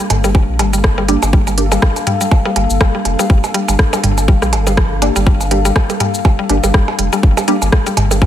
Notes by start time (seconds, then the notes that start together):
Already playing: A#3 D4 A4 F5
0.10 G1, closed hi-hat, mid tom, percussion blips
0.24 G3, percussion blips, cabasa
0.35 G3, kick, percussion blips
0.49 A#1
0.59 G1 G3, closed hi-hat, percussion blips
0.73 G3, cabasa
0.84 kick, cross-stick, percussion blips
0.98 G3, percussion blips
1.08 G3 A#3 D4 G4, closed hi-hat
1.22 G1, percussion blips, cabasa
1.33 G3, kick
1.47 G3, percussion blips, cabasa
1.58 A#3 D4 G4, closed hi-hat
1.72 G3, percussion blips, cabasa
1.82 G3, kick, cross-stick
1.96 closed hi-hat, percussion blips, cabasa
2.07 G3, closed hi-hat, mid tom
2.21 G3, cabasa
2.31 kick, percussion blips
2.45 G3, percussion blips
2.56 G1 G3, closed hi-hat, percussion blips
2.70 G1, cabasa
2.81 G1 G3, kick, cross-stick, percussion blips
2.95 G3
3.05 F1, closed hi-hat, percussion blips
3.19 G3, percussion blips, cabasa
3.30 G1 G3, kick
3.44 percussion blips, cabasa
3.54 G3, closed hi-hat
3.68 G1 G3, percussion blips, cabasa
3.79 kick, cross-stick
3.93 G3, closed hi-hat, percussion blips, cabasa
4.03 G1 G3, closed hi-hat, mid tom
4.18 percussion blips, cabasa
4.28 G3, kick
4.42 A#1 G3, cross-stick, cabasa
4.53 G1, closed hi-hat, percussion blips
4.67 G3, percussion blips, cabasa
4.77 F3, kick, cross-stick, percussion blips
5.02 A#3 D4 G4, closed hi-hat, percussion blips
5.16 G1 G3, cabasa
5.26 G3, kick
5.41 percussion blips, cabasa
5.51 G3 A#3 D4 G4, closed hi-hat
5.65 G3, cabasa
5.76 kick, cross-stick, percussion blips
5.90 G3, closed hi-hat, percussion blips, cabasa
6.00 G3, closed hi-hat, mid tom, percussion blips
6.14 cabasa
6.25 G3, kick, percussion blips
6.39 G3
6.49 G1 A#3 D4 G4, closed hi-hat, percussion blips
6.63 G1 G3, percussion blips, cabasa
6.74 G1 G3, kick, cross-stick
6.88 percussion blips
6.99 F1 G3, closed hi-hat
7.13 G3, percussion blips, cabasa
7.23 G1, kick
7.37 G3, percussion blips, cabasa
7.48 G3 A#3 D4 G4, closed hi-hat
7.62 G1, percussion blips, cabasa
7.72 G3, kick, cross-stick
7.86 G3, closed hi-hat, cabasa
7.97 G1, closed hi-hat, mid tom, percussion blips
8.11 G3, percussion blips, cabasa
8.22 G3, kick, percussion blips